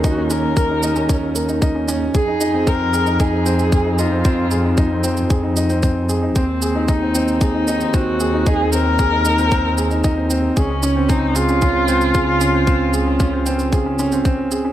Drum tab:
SH |x-x-x-xxx-xxx-x-|x-x-x-xxx-xxx-x-|x-x-x-xxx-xxx-x-|x-x-x-xxx-xxx-x-|
BD |o---o---o---o---|o---o---o---o---|o---o---o---o---|o---o---o---o---|

SH |x-x-x-xxx-xxx-x-|x-x-x-xxx-xxx-x-|x-x-x-xxx-xxx-x-|
BD |o---o---o---o---|o---o---o---o---|o---o---o---o---|